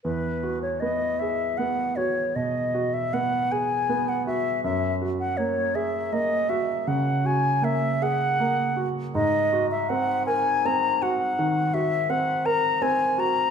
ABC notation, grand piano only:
X:1
M:12/8
L:1/8
Q:3/8=53
K:Elyd
V:1 name="Grand piano"
E,, F B, G B, F B,, F B, G B, F | F,, F A, G A, F C, F A, G A, F | G,, F ^B, A B, F D, F B, A B, F |]